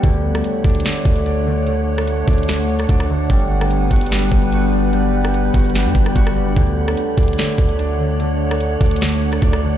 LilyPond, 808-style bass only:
\new Staff \with { instrumentName = "808-style bass" } { \clef bass \time 4/4 \key d \major \tempo 4 = 147 d,4 r8 d,8 r8 d,4.~ | d,4. d,4. d,4 | g,,4. g,,4 g,,4.~ | g,,4. g,,8. g,16 g,,8 g,,8 fis,,16 g,,16 |
d,4 r8 d,8 r8 d,4.~ | d,4. d,4. d,4 | }